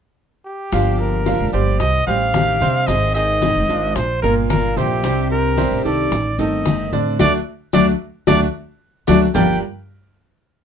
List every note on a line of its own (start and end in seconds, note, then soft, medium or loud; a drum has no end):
0.45 1.01 G4 medium
0.72 1.36 G1 loud
0.72 1.24 D3 medium
0.72 1.17 F3 medium
0.72 1.25 F3 medium
0.72 1.26 A#3 medium
0.72 1.26 D4 medium
0.72 1.17 F4 medium
0.72 1.26 G4 medium
0.72 1.17 F5 medium
0.72 high bongo medium
0.72 high conga soft
0.72 maracas medium
0.99 1.52 A#4 medium
0.99 high bongo soft
0.99 high conga soft
1.26 1.79 D3 medium
1.26 1.79 F3 medium
1.26 1.49 F3 medium
1.26 1.79 A#3 medium
1.26 1.80 D4 medium
1.26 1.49 F4 medium
1.26 1.80 G4 medium
1.26 1.49 F5 medium
1.26 high bongo medium
1.26 high conga medium
1.26 maracas medium
1.40 1.53 F1 medium
1.53 1.79 G1 medium
1.53 1.98 G3 medium
1.53 1.98 G4 medium
1.53 1.98 C5 medium
1.53 1.81 D5 medium
1.53 high conga soft
1.53 maracas soft
1.79 2.06 C2 medium
1.79 2.06 D#5 loud
1.79 muted steel-string acoustic guitar stroke medium
1.79 high bongo medium
1.79 high conga soft
1.79 maracas medium
2.07 2.59 A1 medium
2.07 2.51 G3 medium
2.07 2.34 G3 soft
2.07 2.34 D4 soft
2.07 2.33 G4 soft
2.07 2.52 G4 medium
2.07 2.52 C5 medium
2.07 2.88 F5 loud
2.07 high bongo soft
2.07 high conga soft
2.34 2.60 C3 medium
2.34 2.60 D#3 medium
2.34 2.61 G3 medium
2.34 2.61 D4 medium
2.34 2.60 G4 medium
2.34 high bongo medium
2.34 low bongo medium
2.34 high conga medium
2.34 maracas medium
2.61 3.05 C3 medium
2.61 2.89 C3 medium
2.61 2.88 G3 soft
2.61 3.06 C4 medium
2.61 2.88 D4 soft
2.61 2.87 G4 soft
2.61 3.06 C5 medium
2.61 high bongo soft
2.61 high conga medium
2.61 maracas soft
2.87 3.52 G#1 medium
2.87 3.41 D#3 medium
2.87 3.41 G#3 medium
2.87 3.42 C4 medium
2.87 3.42 G#4 medium
2.87 3.14 D#5 loud
2.87 high bongo medium
2.87 high conga soft
2.87 maracas medium
3.14 3.59 D#3 medium
3.14 3.60 D#4 medium
3.14 3.60 G#4 medium
3.14 3.97 D#5 medium
3.14 high conga soft
3.14 maracas soft
3.42 3.95 D#3 medium
3.42 3.95 G#3 medium
3.42 3.96 C4 medium
3.42 3.96 G#4 medium
3.42 high bongo medium
3.42 high conga medium
3.42 maracas medium
3.56 3.68 F1 medium
3.69 3.95 G#1 medium
3.69 4.14 D4 medium
3.69 4.14 F4 medium
3.69 high bongo soft
3.69 maracas soft
3.96 4.22 A#1 medium
3.96 4.22 C5 medium
3.96 muted steel-string acoustic guitar stroke medium
3.96 high bongo medium
3.96 high conga soft
3.96 maracas medium
4.22 4.74 G1 medium
4.22 4.68 A#2 medium
4.22 4.68 A#3 medium
4.22 4.49 A#3 soft
4.22 4.49 D4 soft
4.22 4.49 F4 medium
4.22 4.35 A#4 medium
4.22 4.68 A#4 medium
4.22 high bongo soft
4.22 high conga soft
4.49 4.76 D3 medium
4.49 4.76 A#3 medium
4.49 4.76 D4 medium
4.49 4.75 F4 medium
4.49 4.79 A#4 medium
4.49 high bongo medium
4.49 low bongo medium
4.49 high conga medium
4.49 maracas medium
4.76 5.04 A#1 medium
4.76 4.99 C3 medium
4.76 5.04 A#3 soft
4.76 5.00 C4 medium
4.76 5.03 D4 soft
4.76 5.03 F4 soft
4.76 5.30 G4 medium
4.76 5.00 C5 medium
4.76 high bongo soft
4.76 high conga medium
4.76 maracas soft
5.03 5.68 C2 loud
5.03 5.56 C3 medium
5.03 5.48 C3 medium
5.03 5.57 G3 medium
5.03 5.48 C4 medium
5.03 5.57 C4 medium
5.03 5.57 D4 medium
5.03 5.58 G4 medium
5.03 5.49 C5 medium
5.03 high bongo medium
5.03 maracas medium
5.31 5.81 A#4 medium
5.31 high bongo soft
5.31 high conga soft
5.57 6.11 C3 medium
5.57 5.80 C3 medium
5.57 6.11 G3 medium
5.57 5.80 C4 medium
5.57 6.11 C4 medium
5.57 6.11 D4 medium
5.57 6.12 G4 medium
5.57 5.80 C5 medium
5.57 high bongo medium
5.57 high conga medium
5.57 maracas medium
5.72 5.84 A1 medium
5.84 6.10 C2 medium
5.84 6.29 D#3 medium
5.84 6.29 A4 medium
5.84 6.40 D5 medium
5.84 high conga soft
5.84 maracas soft
6.11 6.37 A1 medium
6.11 muted steel-string acoustic guitar stroke medium
6.11 high bongo medium
6.11 high conga soft
6.11 maracas medium
6.38 6.90 G1 medium
6.38 6.83 D#3 medium
6.38 6.65 A3 soft
6.38 6.64 C4 soft
6.38 6.83 D#4 medium
6.38 6.84 A4 medium
6.38 6.93 D#5 medium
6.38 high bongo soft
6.38 high conga soft
6.38 maracas medium
6.65 6.91 D#3 medium
6.65 6.92 A3 medium
6.65 6.91 C4 medium
6.65 high bongo medium
6.65 low bongo medium
6.65 high conga medium
6.65 maracas medium
6.92 7.19 A2 medium
6.92 7.15 D3 medium
6.92 7.18 A3 soft
6.92 7.18 C4 soft
6.92 7.15 D4 medium
6.92 7.15 D5 medium
6.92 high bongo soft
6.92 high conga medium
6.92 maracas soft
7.19 7.40 D2 loud
7.19 7.37 F#3 medium
7.19 7.37 A3 loud
7.19 7.37 A3 medium
7.19 7.37 D4 medium
7.19 7.37 F#4 medium
7.19 7.33 D5 loud
7.19 high bongo medium
7.19 high conga loud
7.19 maracas loud
7.73 7.94 D2 loud
7.73 7.91 F#3 loud
7.73 7.91 A3 medium
7.73 7.91 D4 medium
7.73 7.91 F#4 medium
7.73 7.87 D5 medium
7.73 high bongo medium
7.73 high conga medium
7.73 maracas medium
8.27 8.48 D2 medium
8.27 8.45 F#3 loud
8.27 8.45 A3 loud
8.27 8.45 A3 medium
8.27 8.45 D4 loud
8.27 8.45 D4 medium
8.27 8.45 F#4 loud
8.27 8.40 D5 medium
8.27 high bongo loud
8.27 high conga loud
8.27 maracas medium
9.08 9.28 D2 medium
9.08 9.25 F#3 medium
9.08 9.25 A3 medium
9.08 9.25 D4 medium
9.08 9.25 F#4 loud
9.08 9.21 D5 medium
9.08 high bongo loud
9.08 high conga medium
9.08 maracas medium
9.34 9.60 G1 medium
9.34 9.56 G2 medium
9.34 9.56 D3 medium
9.34 9.57 F3 medium
9.34 9.60 G3 medium
9.34 9.57 A#3 medium
9.34 9.60 D4 medium
9.34 9.57 D4 medium
9.34 9.60 F4 medium
9.34 9.60 G4 medium
9.34 9.57 G4 medium
9.34 9.60 A#4 medium
9.34 9.60 D5 medium
9.34 9.60 G5 medium
9.34 low bongo medium
9.34 low conga medium
9.34 maracas medium